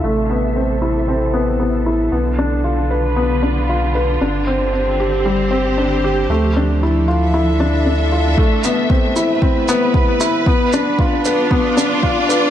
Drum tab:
SH |--------|--------|--------|--------|
BD |--------|--------|--------|--------|

SH |-x-x-x-x|-x-x-x-x|
BD |o-o-o-o-|o-o-o-o-|